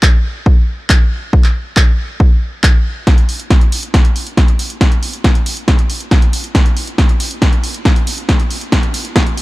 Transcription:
0.03 kick loud
0.03 clap loud
0.46 kick loud
0.90 kick loud
0.90 clap loud
1.33 kick loud
1.44 clap soft
1.77 kick loud
1.77 clap loud
2.20 kick loud
2.64 kick loud
2.64 clap loud
3.07 kick loud
3.07 snare soft
3.07 closed hi-hat medium
3.18 closed hi-hat soft
3.29 open hi-hat medium
3.40 closed hi-hat medium
3.50 kick loud
3.50 snare soft
3.50 closed hi-hat medium
3.61 closed hi-hat medium
3.72 open hi-hat loud
3.83 closed hi-hat medium
3.94 kick loud
3.94 snare soft
3.94 closed hi-hat medium
4.05 closed hi-hat medium
4.16 open hi-hat loud
4.27 closed hi-hat soft
4.37 kick loud
4.37 snare soft
4.37 closed hi-hat medium
4.48 closed hi-hat medium
4.59 open hi-hat medium
4.70 closed hi-hat medium
4.81 kick loud
4.81 snare soft
4.81 closed hi-hat medium
4.92 closed hi-hat soft
5.03 open hi-hat loud
5.13 closed hi-hat medium
5.24 kick loud
5.24 snare soft
5.24 closed hi-hat medium
5.35 closed hi-hat medium
5.46 open hi-hat loud
5.57 closed hi-hat soft
5.68 kick loud
5.68 snare medium
5.68 closed hi-hat medium
5.79 closed hi-hat soft
5.90 open hi-hat loud
6.00 closed hi-hat soft
6.11 kick loud
6.11 snare medium
6.11 closed hi-hat medium
6.22 closed hi-hat medium
6.33 open hi-hat loud
6.44 closed hi-hat soft
6.55 kick loud
6.55 snare medium
6.55 closed hi-hat medium
6.66 closed hi-hat soft
6.77 open hi-hat loud
6.87 closed hi-hat soft
6.98 kick loud
6.98 snare medium
6.98 closed hi-hat medium
7.09 closed hi-hat soft
7.20 open hi-hat loud
7.31 closed hi-hat soft
7.42 kick loud
7.42 snare medium
7.42 closed hi-hat medium
7.53 closed hi-hat soft
7.64 open hi-hat loud
7.74 closed hi-hat soft
7.85 kick loud
7.85 snare medium
7.85 closed hi-hat medium
7.96 closed hi-hat soft
8.07 open hi-hat loud
8.18 closed hi-hat medium
8.29 kick loud
8.29 snare medium
8.29 closed hi-hat medium
8.40 closed hi-hat soft
8.51 open hi-hat loud
8.61 closed hi-hat soft
8.72 kick loud
8.72 snare medium
8.72 closed hi-hat medium
8.83 closed hi-hat soft
8.94 open hi-hat loud
9.05 closed hi-hat soft
9.16 kick loud
9.16 snare medium
9.16 closed hi-hat medium
9.27 closed hi-hat soft
9.37 open hi-hat loud

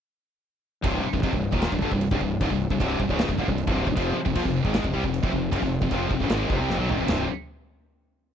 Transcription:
0.83 1.02 C1 medium
0.83 1.02 C2 loud
0.83 1.03 G2 loud
0.83 1.03 C3 loud
0.83 kick loud
0.83 crash medium
1.04 muted distorted electric guitar stroke medium
1.04 muted fingered electric bass stroke soft
1.13 1.22 C1 medium
1.13 1.23 C2 medium
1.13 1.23 G2 medium
1.13 kick medium
1.23 1.32 F1 medium
1.23 1.32 F2 medium
1.23 1.33 C3 medium
1.23 kick loud
1.23 crash medium
1.32 1.51 C1 medium
1.32 1.49 C2 medium
1.32 1.49 G2 medium
1.32 kick medium
1.53 1.71 D#1 medium
1.53 1.72 D#2 medium
1.53 1.72 A#2 medium
1.53 1.72 D#3 loud
1.53 kick loud
1.62 snare loud
1.62 crash medium
1.72 1.81 C1 medium
1.72 1.82 C2 medium
1.72 1.81 G2 medium
1.72 kick loud
1.82 1.90 G1 medium
1.82 1.91 G2 medium
1.82 1.92 D3 loud
1.82 kick medium
1.91 2.10 C1 medium
1.91 2.08 C2 medium
1.91 2.08 G2 medium
1.91 kick medium
2.01 crash medium
2.11 2.20 C1 loud
2.11 2.21 C2 medium
2.11 2.20 G2 medium
2.11 kick loud
2.21 2.39 C1 medium
2.21 2.37 C2 medium
2.21 2.37 G2 medium
2.21 kick medium
2.41 2.50 C#1 loud
2.41 2.50 C#2 loud
2.41 2.50 G#2 loud
2.41 kick loud
2.41 crash medium
2.50 2.69 C1 medium
2.50 2.67 C2 medium
2.50 2.67 G2 medium
2.50 kick medium
2.70 2.79 C1 medium
2.70 2.80 C2 medium
2.70 2.81 G2 medium
2.70 kick medium
2.79 2.98 C1 loud
2.79 3.00 C2 medium
2.79 3.00 G2 medium
2.79 3.00 C3 medium
2.79 kick loud
2.79 crash medium
3.00 3.08 C1 medium
3.00 3.10 C2 medium
3.00 3.10 G2 medium
3.00 kick medium
3.09 3.27 C#1 loud
3.09 3.29 C#2 medium
3.09 3.29 G#2 medium
3.09 3.30 C#3 loud
3.09 kick medium
3.19 snare loud
3.19 crash medium
3.28 3.37 C1 medium
3.28 3.38 C2 medium
3.28 3.38 G2 medium
3.28 kick loud
3.38 3.47 G1 medium
3.38 3.47 G2 loud
3.38 3.48 D3 loud
3.38 kick medium
3.47 3.66 C1 medium
3.47 3.64 C2 medium
3.47 3.64 G2 medium
3.47 kick medium
3.58 crash medium
3.67 3.86 C1 loud
3.67 3.85 C2 medium
3.67 3.86 G2 medium
3.67 3.87 C3 loud
3.67 kick loud
3.87 3.96 C1 medium
3.87 3.96 C2 medium
3.87 3.96 G2 medium
3.87 kick medium
3.96 4.15 F1 loud
3.96 4.15 F2 loud
3.96 4.16 C3 loud
3.96 4.16 F3 loud
3.96 kick loud
3.96 crash medium
4.16 muted fingered electric bass stroke soft
4.16 muted distorted electric guitar stroke medium
4.25 4.35 F1 medium
4.25 4.35 F2 medium
4.25 4.35 C3 medium
4.25 kick medium
4.35 4.45 A#1 medium
4.35 4.45 A#2 medium
4.35 4.45 F3 medium
4.35 kick medium
4.35 crash medium
4.45 4.64 F1 medium
4.45 4.61 F2 medium
4.45 4.62 C3 medium
4.45 kick medium
4.64 4.83 G#1 loud
4.64 4.84 G#2 medium
4.64 4.84 D#3 medium
4.64 4.85 G#3 loud
4.64 kick medium
4.74 snare loud
4.74 crash medium
4.84 4.93 F1 medium
4.84 4.94 F2 medium
4.84 4.93 C3 medium
4.84 kick loud
4.94 5.03 C2 medium
4.94 5.03 C3 loud
4.94 5.04 G3 medium
4.94 kick medium
5.04 5.22 F1 medium
5.04 5.20 F2 medium
5.04 5.20 C3 medium
5.04 kick medium
5.14 crash medium
5.23 5.32 F1 loud
5.23 5.33 F2 medium
5.23 5.33 C3 loud
5.23 kick loud
5.33 5.51 F1 medium
5.33 5.49 F2 medium
5.33 5.49 C3 medium
5.33 kick medium
5.52 5.61 F#1 loud
5.52 5.62 F#2 loud
5.52 5.62 C#3 loud
5.52 kick loud
5.52 crash medium
5.62 5.80 F1 medium
5.62 5.78 F2 medium
5.62 5.79 C3 medium
5.62 kick medium
5.82 5.90 F1 medium
5.82 5.92 F2 medium
5.82 5.92 C3 medium
5.82 kick medium
5.91 6.09 F1 medium
5.91 6.11 F2 medium
5.91 6.12 C3 medium
5.91 6.12 F3 loud
5.91 kick loud
5.91 crash medium
6.11 6.19 F1 medium
6.11 6.22 F2 medium
6.11 6.22 C3 medium
6.11 kick medium
6.20 6.29 F#1 loud
6.20 6.31 F#2 medium
6.20 kick medium
6.24 6.32 C#3 loud
6.28 6.48 G#1 loud
6.28 6.47 G#2 medium
6.28 6.48 D#3 loud
6.28 snare loud
6.28 crash medium
6.32 6.50 G#2 medium
6.32 6.51 D#3 loud
6.32 6.51 G#3 loud
6.50 6.59 F1 medium
6.50 6.60 F2 medium
6.50 6.60 C3 loud
6.50 kick loud
6.59 6.69 C2 loud
6.59 6.70 C3 medium
6.59 6.70 G3 loud
6.69 6.78 F1 medium
6.69 6.80 F2 medium
6.69 6.80 C3 loud
6.69 snare medium
6.78 6.88 B1 medium
6.78 6.89 B2 medium
6.78 6.90 F#3 loud
6.89 6.98 G#1 medium
6.89 6.99 G#2 loud
6.89 6.99 D#3 loud
6.89 floor tom loud
6.99 7.08 F1 medium
6.99 7.08 F2 medium
6.99 7.08 C3 loud
7.08 7.27 C1 medium
7.08 7.24 C2 loud
7.08 7.25 G2 loud
7.08 7.25 C3 loud
7.08 snare loud
7.08 floor tom loud
7.08 crash medium

